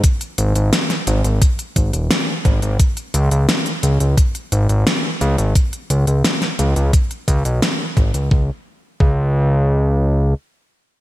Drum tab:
HH |xxxxxxxxxxxxx-xx|xxxxxxxxxxxxx-xx|xxxxxxxxxxxxx-xx|----------------|
SD |----oo------o---|----o-------o---|----oo------o---|----------------|
BD |o-------o-o---o-|o-------o-------|o-------o-o---o-|o---o-----------|